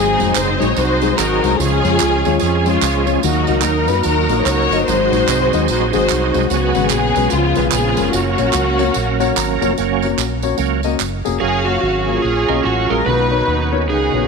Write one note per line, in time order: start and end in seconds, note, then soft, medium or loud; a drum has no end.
0.00 0.16 G#1 loud
0.00 0.56 G#2 medium
0.00 1.55 F#3 medium
0.00 0.73 C4 medium
0.00 1.56 C4 medium
0.00 0.73 D#4 medium
0.00 1.55 D#4 medium
0.00 0.32 G#4 loud
0.00 1.55 G#4 medium
0.19 0.34 F1 loud
0.19 0.29 G#3 medium
0.19 0.29 D#4 medium
0.19 0.29 F#4 medium
0.19 0.29 C5 medium
0.19 tambourine medium
0.35 0.57 F#1 loud
0.35 0.61 C5 loud
0.35 clap medium
0.35 tambourine loud
0.59 0.75 A#1 medium
0.59 0.70 G#3 medium
0.59 0.70 D#4 medium
0.59 0.70 F#4 medium
0.59 0.70 C5 medium
0.59 0.76 C#5 loud
0.59 tambourine soft
0.76 1.12 C2 loud
0.76 1.17 D#4 medium
0.76 1.16 F#4 medium
0.76 1.18 C5 loud
0.76 tambourine medium
1.02 1.12 G#3 medium
1.02 1.12 D#4 medium
1.02 1.12 F#4 medium
1.02 1.12 G#4 medium
1.02 tambourine soft
1.17 1.39 G#1 medium
1.17 1.56 D#4 medium
1.17 1.55 F#4 medium
1.17 1.58 A#4 loud
1.17 clap medium
1.17 tambourine loud
1.43 1.57 C2 medium
1.43 1.53 G#3 medium
1.43 1.53 D#4 medium
1.43 1.53 F#4 medium
1.43 1.53 C5 medium
1.43 tambourine soft
1.57 1.80 C#2 medium
1.57 2.22 C#3 medium
1.57 3.20 F3 medium
1.57 3.20 G#3 medium
1.57 2.37 C#4 medium
1.57 3.20 C#4 medium
1.57 2.37 F4 medium
1.57 1.65 G4 medium
1.57 2.39 G#4 loud
1.57 tambourine medium
1.66 3.23 G#4 medium
1.84 1.98 F2 loud
1.84 1.94 G#3 medium
1.84 1.94 C#4 medium
1.84 1.94 F4 medium
1.84 1.94 C#5 medium
1.84 tambourine soft
2.00 2.22 C#2 medium
2.00 clap loud
2.00 tambourine medium
2.25 2.39 D#2 medium
2.25 2.35 G#3 medium
2.25 2.35 C#4 medium
2.25 2.35 F4 medium
2.25 2.35 C#5 medium
2.25 tambourine medium
2.39 2.76 F2 medium
2.39 2.66 C#4 medium
2.39 2.65 F4 medium
2.39 2.64 G#4 medium
2.39 tambourine medium
2.66 2.76 G#3 medium
2.66 3.19 G#3 medium
2.66 2.76 C#4 medium
2.66 3.19 C#4 medium
2.66 3.07 F4 medium
2.66 2.76 F4 medium
2.66 2.76 C#5 medium
2.66 tambourine medium
2.82 3.17 C#2 loud
2.82 clap medium
2.82 tambourine medium
3.06 3.16 G#3 medium
3.06 3.16 C#4 medium
3.06 3.16 F4 medium
3.06 3.16 C#5 medium
3.06 tambourine medium
3.22 3.45 D#2 medium
3.22 3.85 D#3 medium
3.22 4.84 F#3 medium
3.22 4.01 A#3 medium
3.22 4.84 A#3 medium
3.22 4.01 D#4 medium
3.22 4.84 D#4 medium
3.22 3.60 F#4 medium
3.22 4.84 A#4 medium
3.22 tambourine medium
3.47 3.62 C#2 medium
3.47 3.58 A#3 medium
3.47 3.58 D#4 medium
3.47 3.58 F#4 medium
3.47 3.58 D#5 medium
3.47 tambourine soft
3.62 3.90 D#2 medium
3.62 3.88 A#4 medium
3.62 clap medium
3.62 tambourine medium
3.87 4.03 F#2 medium
3.87 3.99 A#3 medium
3.87 3.99 D#4 medium
3.87 3.99 F#4 medium
3.87 3.99 A#4 medium
3.87 4.04 B4 medium
3.87 tambourine medium
4.03 4.26 D#2 medium
4.03 4.83 D#4 medium
4.03 4.44 F#4 medium
4.03 4.42 A#4 loud
4.03 tambourine medium
4.29 4.43 A#1 loud
4.29 4.40 A#3 medium
4.29 4.40 D#4 medium
4.29 4.40 F#4 medium
4.29 4.40 A#4 medium
4.29 tambourine medium
4.44 4.67 C#2 medium
4.44 4.84 F#4 medium
4.44 4.84 A#4 medium
4.44 4.86 C#5 loud
4.44 clap medium
4.44 tambourine medium
4.70 4.84 G1 medium
4.70 4.81 A#3 medium
4.70 4.81 D#4 medium
4.70 4.81 F#4 medium
4.70 4.82 D#5 medium
4.70 tambourine medium
4.85 5.08 G#1 medium
4.85 5.49 G#2 medium
4.85 6.47 F#3 medium
4.85 6.47 C4 medium
4.85 5.64 D#4 medium
4.85 6.47 D#4 medium
4.85 5.64 F#4 medium
4.85 6.47 G#4 medium
4.85 5.63 C5 loud
4.85 tambourine medium
5.12 5.25 A#1 loud
5.12 5.22 G#3 medium
5.12 5.22 D#4 medium
5.12 5.22 F#4 medium
5.12 5.22 C5 medium
5.12 tambourine medium
5.28 5.49 C2 loud
5.28 clap medium
5.28 tambourine medium
5.53 5.67 D#2 medium
5.53 5.63 G#3 medium
5.53 5.63 D#4 medium
5.53 5.63 F#4 medium
5.53 5.63 D#5 medium
5.53 tambourine medium
5.68 5.90 A#1 medium
5.68 5.91 D#4 medium
5.68 5.91 F#4 medium
5.68 5.90 C5 loud
5.68 tambourine medium
5.91 6.08 G#1 medium
5.91 6.03 G#3 medium
5.91 6.46 D#4 medium
5.91 6.03 D#4 medium
5.91 6.46 F#4 medium
5.91 6.03 F#4 medium
5.91 6.03 G#4 medium
5.91 6.30 C5 loud
5.91 tambourine medium
6.09 6.31 C2 medium
6.09 clap medium
6.09 tambourine medium
6.34 6.48 C2 medium
6.34 6.44 G#3 medium
6.34 6.44 D#4 medium
6.34 6.44 F#4 medium
6.34 6.44 C5 medium
6.34 tambourine medium
6.48 6.71 C#2 medium
6.48 7.12 C#3 medium
6.48 7.30 F#3 medium
6.48 6.90 B3 medium
6.48 7.29 B3 medium
6.48 7.28 C#4 medium
6.48 6.87 F#4 loud
6.48 6.56 F#4 medium
6.48 tambourine medium
6.55 7.29 G#4 medium
6.75 6.89 G#1 medium
6.75 6.85 G#3 medium
6.75 6.85 C#4 medium
6.75 6.85 F#4 medium
6.75 6.85 B4 medium
6.75 tambourine soft
6.90 7.12 A#1 medium
6.90 7.29 B3 medium
6.90 7.31 G#4 loud
6.90 clap medium
6.90 tambourine medium
7.16 7.29 B1 medium
7.16 7.26 G#3 medium
7.16 7.26 C#4 medium
7.16 7.26 F#4 medium
7.16 7.26 B4 medium
7.16 tambourine medium
7.29 7.53 C#2 medium
7.29 7.94 C#3 medium
7.29 8.11 F3 medium
7.29 8.10 G#3 medium
7.29 8.11 B3 medium
7.29 7.71 B3 medium
7.29 8.10 C#4 medium
7.29 7.70 F4 medium
7.29 8.11 G#4 medium
7.29 tambourine medium
7.55 7.71 B1 medium
7.55 7.66 G#3 medium
7.55 7.66 C#4 medium
7.55 7.66 F4 medium
7.55 7.67 B4 medium
7.55 tambourine soft
7.71 7.94 A#1 medium
7.71 8.10 B3 medium
7.71 8.10 F4 medium
7.71 8.10 G#4 medium
7.71 clap medium
7.71 tambourine medium
7.97 8.11 F1 medium
7.97 8.07 G#3 medium
7.97 8.07 C#4 medium
7.97 8.07 F4 medium
7.97 8.07 A#4 medium
7.97 tambourine medium
8.11 8.35 F#1 loud
8.11 9.73 F#3 medium
8.11 9.73 A#3 medium
8.11 9.57 A#3 medium
8.11 9.73 C#4 medium
8.11 9.57 C#4 medium
8.11 9.60 F#4 medium
8.11 9.73 A#4 medium
8.11 tambourine loud
8.38 8.52 A#1 medium
8.38 8.48 A#3 medium
8.38 8.48 C#4 medium
8.38 8.48 F#4 medium
8.38 8.48 C#5 medium
8.38 tambourine medium
8.53 8.89 C#2 loud
8.53 clap medium
8.53 tambourine loud
8.79 8.89 A#3 medium
8.79 8.89 C#4 medium
8.79 8.89 F#4 medium
8.79 8.89 C#5 medium
8.79 tambourine medium
8.94 9.30 A#1 medium
8.94 tambourine medium
9.20 9.30 A#3 medium
9.20 9.30 C#4 medium
9.20 9.30 F#4 medium
9.20 9.30 C#5 medium
9.20 9.35 F#5 medium
9.20 tambourine soft
9.37 9.58 G#1 medium
9.37 9.74 A#5 medium
9.37 clap loud
9.37 tambourine medium
9.61 9.75 F1 medium
9.61 9.71 A#3 medium
9.61 9.72 C#4 medium
9.61 9.71 F#4 medium
9.61 9.71 C#5 medium
9.61 tambourine medium
9.78 10.13 F#1 medium
9.78 10.08 F#3 medium
9.78 10.07 A#3 soft
9.78 10.08 C#4 medium
9.78 tambourine medium
10.02 10.08 A#3 medium
10.02 10.08 C#4 medium
10.02 10.08 F#4 medium
10.02 10.07 C#5 medium
10.02 tambourine soft
10.10 10.21 A#3 medium
10.10 10.21 C#4 medium
10.10 10.21 F#4 medium
10.10 10.21 C#5 medium
10.18 10.53 A#1 medium
10.18 clap medium
10.18 tambourine medium
10.42 10.53 A#3 medium
10.42 10.53 C#4 medium
10.42 10.53 F#4 medium
10.42 10.53 C#5 medium
10.42 tambourine medium
10.57 10.94 C#2 medium
10.57 10.81 F#3 soft
10.57 10.81 A#3 soft
10.57 10.81 C#4 soft
10.57 tambourine medium
10.83 10.94 A#3 medium
10.83 10.95 C#4 medium
10.83 10.95 F#4 medium
10.83 10.94 D#5 medium
10.83 tambourine soft
11.00 11.21 F#1 medium
11.00 clap medium
11.00 tambourine medium
11.25 11.40 F1 medium
11.25 11.35 A#3 medium
11.25 11.35 C#4 medium
11.25 11.35 F#4 medium
11.25 11.35 G#4 medium
11.25 tambourine medium
11.39 11.76 F#1 medium
11.39 13.02 F#3 medium
11.39 13.02 C#4 medium
11.39 12.04 C#4 medium
11.39 11.64 G#4 medium
11.39 13.02 A#4 medium
11.39 13.02 F5 medium
11.39 12.19 F5 medium
11.65 11.77 A#3 medium
11.65 11.76 F4 medium
11.65 11.80 F#4 medium
11.65 11.76 F#4 medium
11.65 11.77 C#5 medium
11.81 12.18 G#1 medium
11.81 12.20 F#4 medium
11.81 12.05 F#4 medium
12.06 12.18 A#3 medium
12.06 12.85 C#4 medium
12.06 12.85 F4 medium
12.06 12.18 F4 medium
12.06 12.17 F#4 medium
12.06 12.60 G#4 medium
12.06 12.18 A#4 medium
12.22 12.45 A#1 loud
12.22 12.65 G#4 medium
12.49 12.62 B1 medium
12.49 12.59 A#3 medium
12.49 12.64 C#4 medium
12.49 12.59 F4 medium
12.49 12.59 F#4 medium
12.49 12.64 A#4 medium
12.49 12.59 D#5 medium
12.64 12.86 A1 medium
12.64 12.90 F#4 medium
12.64 12.88 F#4 medium
12.64 12.89 G#4 medium
12.90 13.04 A#1 medium
12.90 13.29 G#3 medium
12.90 13.01 A#3 medium
12.90 13.29 F4 medium
12.90 13.01 F4 medium
12.90 13.01 F#4 medium
12.90 13.00 G#4 medium
12.90 12.95 A#4 medium
12.90 13.07 A#4 loud
13.06 13.41 B1 medium
13.06 13.69 B2 medium
13.06 13.12 D3 medium
13.06 13.87 B3 medium
13.06 13.87 C#4 medium
13.06 13.85 D#4 medium
13.06 13.85 F#4 medium
13.06 13.87 B4 medium
13.06 13.68 B4 medium
13.06 13.72 B4 loud
13.12 13.88 D#3 medium
13.31 13.41 B3 medium
13.31 13.41 D#4 medium
13.31 13.41 A#4 medium
13.31 13.41 C#5 medium
13.48 13.89 D#2 medium
13.72 13.82 B3 medium
13.72 13.82 D#4 medium
13.72 13.82 A#4 medium
13.72 13.82 C#5 medium
13.89 14.10 C#2 loud
13.89 14.28 C#3 medium
13.89 14.28 D#3 medium
13.89 14.28 B3 soft
13.89 14.28 B3 medium
13.89 14.28 C#4 soft
13.89 14.28 D#4 medium
13.89 13.95 F4 medium
13.89 14.27 G#4 medium
13.94 14.28 F#4 medium
14.13 14.27 A#1 medium
14.13 14.24 B3 medium
14.13 14.24 D#4 medium
14.13 14.24 F#4 medium
14.13 14.24 C#5 medium